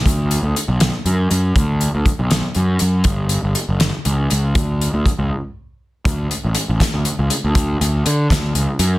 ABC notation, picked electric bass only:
X:1
M:6/8
L:1/16
Q:3/8=80
K:D
V:1 name="Picked electric bass" clef=bass
D,,3 D,, z B,,,2 z F,,2 F,,2 | D,,3 D,, z B,,,2 z F,,2 F,,2 | G,,,3 G,,, z F,,,2 z C,,2 C,,2 | D,,3 D,, z C,, z6 |
D,,2 z A,,, z A,,, z D,, z C,, z D,,- | D,,2 D,,2 D,2 D,,2 C,, z F,,2 |]